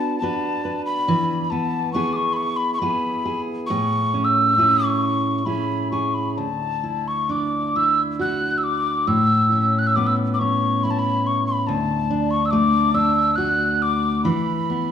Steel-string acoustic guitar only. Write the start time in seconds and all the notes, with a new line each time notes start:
Already playing: B3 D4 F#4 B4
0.22 D4 F#4 B4
0.65 B4
1.08 E3
1.52 B3
1.95 B3 E4 G#4
2.82 B3 E4 G#4
3.25 G#4
3.70 A2 G#4
4.14 C#4
4.58 C#4 E4 G#4
5.46 C#4 E4 G#4
5.92 G#4
6.38 D2
6.83 E4
7.29 D4
7.76 E4
8.19 F#4
9.07 A2
9.52 C#4
9.97 B3
10.41 C#4
10.85 E4
11.68 D2
12.10 D4
12.53 A3
12.94 D4
13.38 F#4
14.25 E3
14.70 B3